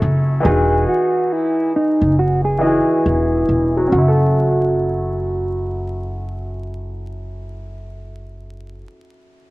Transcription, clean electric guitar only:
0.46 G#4
0.89 F#4
1.32 E4
1.76 D#4
2.19 F#4
2.45 G#4
2.63 E4
3.93 F#4

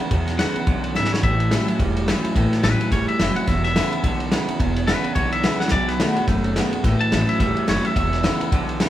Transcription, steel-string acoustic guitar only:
0.00 B3 E4
0.11 E2
0.39 D3 G#3 B3 E4
0.56 B3 E4
0.67 F#2
0.95 G#2
1.24 A2
1.52 E3 G3 C#4 E4
1.69 C#4 E4
1.80 E2
2.08 E3 G3 C#4 E4
2.24 C#4 E4
2.36 A2
2.63 E3 G3 C#4 E4
2.80 C#4 E4
3.19 E3 G3 C#4 E4
3.36 C#4 E4
3.49 E2
3.76 D3 G#3 B3 E4
3.92 B3 E4
4.04 B2
4.32 D3 G#3 B3 E4
4.48 B3 E4
4.60 E2
4.88 D3 G#3 B3 E4
5.03 B3 E4
5.15 B2
5.43 D3 G#3 B3 E4
5.60 B3 E4
5.71 B2
6.00 D#3 A3 B3 F#4
6.17 B3 F#4
6.29 F#2
6.56 D#3 A3 B3 F#4
6.73 B3 F#4
6.85 A2
7.12 E3 C#4 E4
7.41 E2
7.67 E3 G3 C#4 E4
7.85 C#4 E4
7.97 E2
8.24 D3 G#3 B3 E4
8.40 B3 E4
8.52 B2
8.80 D3 G#3 B3 E4

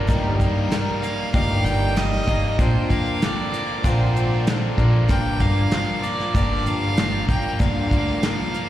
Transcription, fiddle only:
0.09 A#4
0.39 A#4
1.02 F5
1.33 F5
1.64 G5
1.98 D#5
2.60 C5
2.89 F5
3.23 D5
3.88 C5
5.09 G5
5.41 F5
6.02 D5
6.67 F5
7.28 G5
7.60 F5

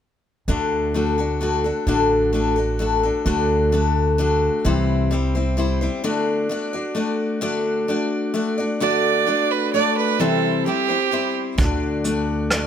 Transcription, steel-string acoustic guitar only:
0.48 D3 A3 D4 F#4 A4
0.94 A3 D4 F#4 A4
1.18 D4 F#4 A4
1.41 A3 D4 F#4 A4
1.64 D4 F#4 A4
1.87 D3 A3 D4 F#4 A4
2.33 A3 D4 F#4 A4
2.56 D4 F#4 A4
2.79 A3 D4 F#4 A4
3.03 D4 F#4 A4
3.26 D3 A3 D4 F#4 A4
3.72 A3 D4 F#4 A4
4.18 A3 D4 F#4 A4
4.65 C3 E3 G3 C4 E4 C5
5.11 G3 C4 E4 C5
5.35 G3 C4 E4 C5
5.57 G3 C4 E4 C5
5.81 G3 C4 E4 C5
6.04 D3 A3 D4 F#4 D5
6.49 A3 D4 F#4 D5
6.73 D4 F#4 D5
6.95 A3 D4 F#4 D5
7.41 D3 A3 D4 F#4 D5
7.88 A3 D4 F#4 D5
8.34 A3 D4 F#4 D5
8.58 D4 F#4 D5
8.80 D3 A3 D4 F#4 D5
9.27 A3 D4 F#4 D5
9.74 A3 D4 F#4 D5
10.19 C3 E3 G3 C4 E4 C5
10.66 G3 C4 E4 C5
10.88 G3 C4 E4 C5
11.11 G3 C4 E4 C5
11.58 D3 A3 D4 F#4 D5
12.04 A3 D4 F#4 D5
12.51 A3 D4 F#4 D5

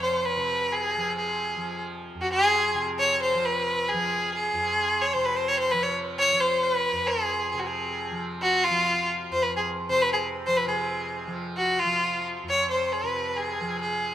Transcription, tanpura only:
Already playing: F2 C3 F3
0.37 C3
0.97 F3
1.56 F3
2.15 F2
2.75 C3
3.34 F3
3.94 F3
4.53 F2
5.15 C3
5.73 F3
6.32 F3
6.92 F2
7.53 C3
8.11 F3
8.70 F3
9.31 F2
9.89 C3
10.47 F3
10.66 C3
11.27 F3
11.85 F3
12.43 F2
13.03 C3
13.61 F3

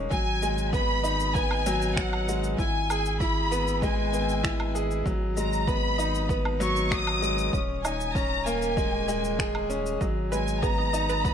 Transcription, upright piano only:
Already playing: G#3 A#3 C#4 D#4
0.10 F#3
0.42 G#3
0.73 B3
1.03 D#4
1.35 B3
1.66 F#3
1.98 F#3
2.28 G#3
2.59 E4
2.90 G#4
3.21 E4
3.51 B3
3.83 G#3
4.13 B3
4.43 E4
4.75 G#4
5.06 F#3
5.37 G#3
5.68 B3
5.98 D#4
6.29 B3
6.60 F#3
6.92 F#3
7.22 G#3
7.53 C#4
7.84 D#4
8.15 C#4
8.46 A#3
8.77 G#3
9.08 G#3
9.39 G#4
9.70 C#4
10.01 F#3
10.32 G#3
10.62 B3
10.93 D#4
11.25 B3

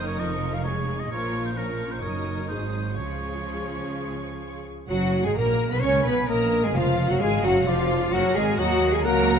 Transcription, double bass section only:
Already playing: F#1
0.18 F1
1.10 A#1
2.02 F#1
2.50 G#1
2.98 C#2
4.89 F#1
5.25 G#1
5.37 A#1
5.72 B1
5.83 C#2
6.06 B1
6.29 A#1
6.64 G#1
6.76 F1
7.10 F#1
7.21 G#1
7.44 F#1
7.66 F1
8.12 F#1
8.35 G#1
8.58 D#2
9.04 C#2

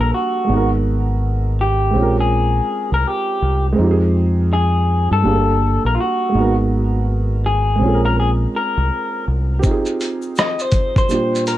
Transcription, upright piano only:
Already playing: G3 A#3 D4 A4 F5
0.45 G#3 B3
0.51 D#4 F#5
0.56 A#4
1.91 G#3 C4
1.97 C#4 F4
2.02 A#4
3.73 G#3 C4
3.78 D#4 F4
3.84 G4
3.91 G#4
5.22 G3 A#3 D4
5.26 G#4 F5
5.34 A4
6.29 G#3 A#3
6.35 B3 D#4 F#4
6.41 A#4
7.76 G#3 C4
7.81 C#4 F4
7.88 A4
7.94 A#4
9.59 C4 G4
9.65 D#4 F4
9.71 G#4
11.08 A#2 G3 D4
11.12 F4 G4

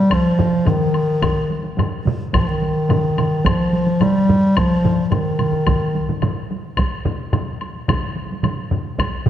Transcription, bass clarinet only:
Already playing: G3
0.13 F3
0.70 D#3
2.35 D#3
2.41 F3
2.48 D#3
3.45 F3
4.02 G3
4.57 F3
5.05 F3
5.11 D#3

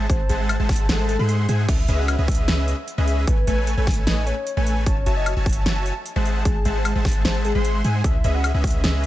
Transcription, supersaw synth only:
0.10 G#3 G#4 C5 E5 F#5 A5
0.29 G#3 G#4 C5 E5 F#5 A5
0.59 G#3 G#4 C5 E5 F#5 A5
0.89 G#3 G#4 C5 E5 F#5 A5
1.19 G#3 G#4 C5 E5 F#5 C6
1.49 G#3 G#4 C5 E5 F#5 G#5
1.69 C#4 G#4 B4 D#5 E5
1.88 C#4 G#4 B4 D#5 E5
2.18 C#4 G#4 B4 D#5 E5
2.48 C#4 G#4 B4 D#5 E5
2.98 C#4 G#4 B4 D#5 E5
3.27 A3 A4 B4 C#5 G#5
3.47 A3 A4 B4 C#5 G#5
3.77 A3 A4 B4 C#5 G#5
4.07 A3 A4 B4 C#5 G#5
4.57 A3 A4 B4 C#5 G#5
4.86 F#4 C#5 E5 G#5 A5
5.06 F#4 C#5 E5 G#5 A5
5.36 F#4 C#5 E5 G#5 A5
5.66 F#4 C#5 E5 G#5 A5
6.16 G#3 G#4 C5 E5 F#5 A5
6.45 G#3 G#4 C5 E5 F#5 A5
6.65 G#3 G#4 C5 E5 F#5 A5
6.95 G#3 G#4 C5 E5 F#5 A5
7.25 G#3 G#4 C5 E5 F#5 A5
7.55 G#3 G#4 C5 E5 F#5 C6
7.84 G#3 G#4 C5 E5 F#5 G#5
8.04 C#4 G#4 B4 D#5 E5
8.24 C#4 G#4 B4 D#5 E5
8.54 C#4 G#4 B4 D#5 E5
8.84 C#4 G#4 B4 D#5 E5

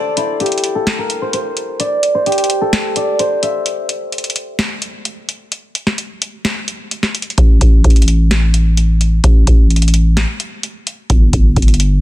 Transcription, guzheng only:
Already playing: G4 A4 C5 D5
0.17 E4
0.40 G4
0.75 A4
0.98 A#4
1.22 C5
1.33 C5
1.80 D5
2.15 C5
2.26 G4
2.61 A4
2.96 D5
3.19 C5
3.43 E5

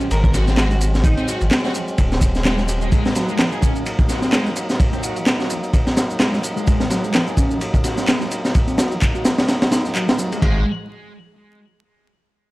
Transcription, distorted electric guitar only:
0.34 F#4
0.48 C4
0.58 G#3
1.18 C4
1.28 F#4
1.64 F#4
2.45 G#3
2.82 G#3
2.92 G#3
3.16 F#3
3.29 G#3
3.52 G#4
3.62 C#4
4.09 F#4
4.22 C4
4.32 G#3
4.93 C4
5.03 F#4
5.40 F#4
6.20 G#3
6.57 G#3
6.67 G#3
6.91 F#3
7.04 G#3
7.28 G#4
7.38 C#4
7.85 F#4
7.98 C4
8.08 G#3
8.68 C4
8.78 F#4
9.15 F#4
9.72 D#4
9.85 D#4
9.95 F#3
10.09 C4
10.19 F#3
10.32 G#3
10.42 G#3

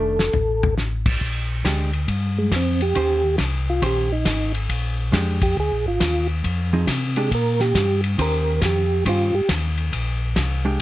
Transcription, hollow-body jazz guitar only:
Already playing: D#3 A3 D4
1.65 G#3 D4 G4
2.95 D#3 C#4 G4 C5
3.82 D#3 C#4 G4 C5
5.12 G#3 D4 G4
6.73 F3 C4 D#4 G#4
7.17 G#3 D4 G4
8.18 D#3 C#4 G4 C5
9.06 D#3 C#4 G4 C5
10.65 G#3 D4 G4

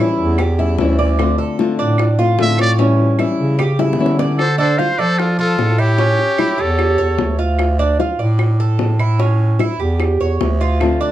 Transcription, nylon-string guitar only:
0.00 E3 G3 C#4 E4
0.39 muted nylon-string guitar stroke
0.59 G3 C#4 E4
0.80 E3 G3 C#4 E4
0.99 G3 C#4 E4
1.18 D3 A3 C4 F4
1.59 D3 A3 C4 F4
1.99 muted nylon-string guitar stroke
2.19 A3 C4 F4
2.39 D3 A3 C4 F4
2.58 A3 C4 F4
2.78 E3 G3 C#4 E4
3.18 E3 G3 C#4 E4
3.59 muted nylon-string guitar stroke
3.79 G3 C#4 E4
3.99 E3 G3 C#4 E4
4.19 G3 C#4 E4
10.80 D3 A3 C4 F4

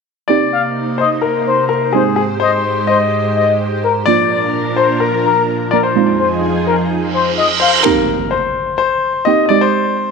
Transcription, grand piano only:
0.28 D5
0.98 C5
1.22 A#4
1.69 A#4
1.93 G#4
2.16 G#4
2.40 C5
2.87 D#5
4.06 D5
4.76 C5
5.00 A#4
5.71 D5
5.83 C5
7.60 C5
7.83 A#4
8.31 C5
8.78 C5
9.25 D#5
9.46 D5 D#5
9.61 C5

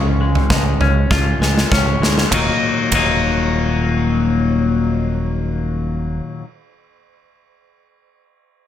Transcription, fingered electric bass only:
Already playing: C#2
0.50 C#2
0.80 C#2
1.11 C#2
1.40 C#2
1.72 C#2
2.00 D2
2.31 D#1
2.92 D#1

